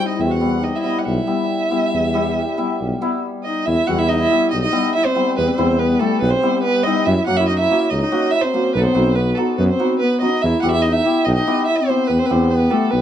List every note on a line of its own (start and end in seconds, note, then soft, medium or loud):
0.00 0.23 G3 medium
0.06 0.18 D#4 medium
0.06 0.22 D#5 medium
0.16 0.72 E2 medium
0.16 0.29 E4 medium
0.21 0.33 E5 medium
0.27 0.60 F#4 medium
0.27 0.65 F#5 medium
0.40 0.83 G3 medium
0.40 0.51 B3 medium
0.40 0.51 E4 medium
0.61 0.78 D#4 medium
0.61 0.74 D#5 medium
0.75 1.05 E4 medium
0.75 0.81 D#5 medium
0.75 0.78 E5 medium
0.80 1.00 D#5 medium
0.80 0.83 E5 medium
0.84 1.26 G3 medium
0.84 0.95 B3 medium
0.84 0.95 E4 medium
0.99 1.08 F#5 soft
1.05 1.20 B1 loud
1.05 3.18 E4 medium
1.05 3.23 E5 medium
1.27 1.70 G3 medium
1.27 1.38 B3 medium
1.27 1.39 E4 medium
1.71 2.13 G3 medium
1.71 1.82 B3 medium
1.71 1.82 E4 medium
1.94 2.46 E2 medium
2.14 2.56 G3 medium
2.14 2.25 B3 medium
2.14 2.25 E4 medium
2.57 3.00 G3 medium
2.57 2.69 B3 medium
2.57 2.69 E4 medium
2.81 2.93 B1 medium
3.01 3.71 G3 medium
3.01 3.12 B3 medium
3.01 3.12 E4 loud
3.43 3.64 D#4 medium
3.43 3.67 D#5 medium
3.65 3.80 E2 medium
3.65 3.89 E4 medium
3.65 3.88 E5 loud
3.87 4.27 E2 loud
3.87 4.29 G3 medium
3.87 3.98 B3 medium
3.87 3.98 E4 medium
3.87 4.00 F#4 medium
3.87 4.00 F#5 medium
3.98 4.09 E4 medium
3.98 4.07 E5 loud
4.07 4.21 D#4 medium
4.07 4.21 D#5 loud
4.07 4.10 E5 medium
4.20 4.54 E4 loud
4.20 4.50 E5 loud
4.30 4.71 G3 medium
4.30 4.41 B3 medium
4.30 4.41 E4 medium
4.51 4.65 B1 medium
4.51 4.63 D#4 medium
4.51 4.61 D#5 loud
4.63 4.93 D#4 medium
4.63 4.92 D#5 loud
4.72 5.14 G3 medium
4.72 4.83 B3 medium
4.72 4.83 E4 medium
4.95 5.07 E4 medium
4.95 5.07 E5 loud
5.05 5.40 C4 medium
5.05 5.37 C5 loud
5.15 5.57 G3 medium
5.15 5.26 B3 medium
5.15 5.26 E4 medium
5.37 5.50 E2 medium
5.37 5.50 B3 medium
5.37 5.49 B4 loud
5.47 5.81 C4 medium
5.47 5.81 C5 loud
5.58 5.96 E2 loud
5.58 5.99 G3 medium
5.58 5.69 B3 medium
5.58 5.69 E4 medium
5.79 6.02 B3 medium
5.79 6.01 B4 medium
6.00 6.42 G3 medium
6.00 6.21 A3 medium
6.00 6.11 B3 medium
6.00 6.11 E4 medium
6.00 6.20 A4 medium
6.21 6.34 B1 loud
6.21 6.34 B3 medium
6.21 6.32 B4 loud
6.30 6.65 C4 medium
6.30 6.63 C5 loud
6.43 6.84 G3 medium
6.43 6.53 B3 medium
6.43 6.54 E4 medium
6.63 6.85 B3 medium
6.63 6.85 B4 loud
6.83 7.11 G3 medium
6.83 6.96 B3 medium
6.83 7.07 D#4 medium
6.83 6.96 E4 medium
6.83 7.07 D#5 loud
7.05 7.19 F#2 loud
7.05 7.29 E4 medium
7.05 7.26 E5 medium
7.27 7.66 F#2 medium
7.27 7.38 A#3 medium
7.27 7.38 C#4 medium
7.27 7.38 F#4 medium
7.27 7.38 F#5 loud
7.37 7.49 E4 medium
7.37 7.47 E5 loud
7.48 7.62 D#4 medium
7.48 7.58 D#5 loud
7.59 7.91 E4 medium
7.59 7.92 E5 loud
7.71 7.81 A#3 medium
7.71 7.81 C#4 medium
7.71 7.81 F#4 medium
7.90 8.04 C#2 medium
7.90 8.01 D#4 medium
7.90 8.00 D#5 loud
8.01 8.35 D#4 medium
8.01 8.32 D#5 loud
8.12 8.22 A#3 medium
8.12 8.22 C#4 medium
8.12 8.22 F#4 medium
8.31 8.46 E4 medium
8.31 8.43 E5 loud
8.42 8.78 C4 medium
8.42 8.73 C5 loud
8.54 8.64 A#3 medium
8.54 8.64 C#4 medium
8.54 8.64 F#4 medium
8.74 8.88 B1 loud
8.74 8.81 B3 medium
8.74 8.81 A4 medium
8.74 8.78 B4 loud
8.79 8.86 B3 medium
8.79 8.85 B4 medium
8.83 9.15 C4 medium
8.83 9.17 C5 loud
8.95 9.33 B1 loud
8.95 9.06 B3 medium
8.95 9.06 D#4 medium
8.95 9.06 F#4 medium
9.15 9.37 B3 medium
9.15 9.37 B4 medium
9.35 9.48 B3 medium
9.35 9.48 D#4 medium
9.35 9.48 F#4 medium
9.35 9.57 A4 medium
9.58 9.71 F#2 loud
9.58 9.73 B3 medium
9.58 9.68 B4 medium
9.69 10.02 C4 loud
9.69 9.98 C5 medium
9.79 9.90 B3 medium
9.79 9.90 D#4 medium
9.79 9.90 F#4 medium
10.00 10.24 B3 medium
10.00 10.20 B4 loud
10.21 10.32 B3 medium
10.21 10.32 D#4 medium
10.21 10.43 D#4 medium
10.21 10.32 F#4 medium
10.21 10.43 D#5 loud
10.42 10.55 E2 loud
10.42 10.66 E4 medium
10.42 10.61 E5 loud
10.62 11.01 E2 loud
10.62 10.73 B3 medium
10.62 10.73 E4 medium
10.62 10.77 F#4 medium
10.62 10.74 G4 medium
10.62 10.71 F#5 loud
10.71 10.84 E5 loud
10.76 10.88 E4 medium
10.82 10.94 D#5 medium
10.87 10.99 D#4 medium
10.92 11.26 E5 loud
10.97 11.27 E4 loud
11.05 11.16 B3 medium
11.05 11.15 E4 medium
11.05 11.16 G4 medium
11.25 11.39 B1 loud
11.25 11.36 D#4 medium
11.25 11.34 D#5 medium
11.34 11.71 D#4 medium
11.34 11.64 D#5 medium
11.47 11.57 B3 medium
11.47 11.57 E4 medium
11.47 11.57 G4 medium
11.66 11.82 E4 medium
11.66 11.77 E5 loud
11.76 12.09 C5 loud
11.81 12.12 C4 medium
11.89 11.99 B3 medium
11.89 11.99 E4 medium
11.89 11.99 G4 medium
12.07 12.22 E2 medium
12.07 12.22 B3 medium
12.07 12.20 B4 medium
12.19 12.33 C4 medium
12.19 12.27 C5 loud
12.26 12.40 B3 medium
12.26 12.34 B4 medium
12.30 12.68 E2 loud
12.30 12.52 C4 medium
12.30 12.40 E4 medium
12.30 12.40 G4 medium
12.30 12.52 C5 medium
12.50 12.71 B3 medium
12.50 12.72 B4 medium
12.70 12.91 A3 medium
12.70 12.81 B3 medium
12.70 12.81 E4 medium
12.70 12.81 G4 medium
12.70 12.92 A4 medium
12.91 13.02 B1 loud
12.91 13.02 B3 medium
12.91 13.02 B4 loud